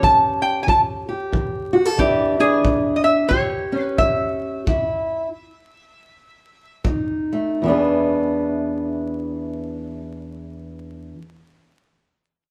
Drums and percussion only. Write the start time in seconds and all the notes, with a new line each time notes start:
0.03 kick
0.68 kick
1.33 kick
1.99 kick
2.65 kick
3.31 kick
3.98 kick
4.67 kick
6.85 kick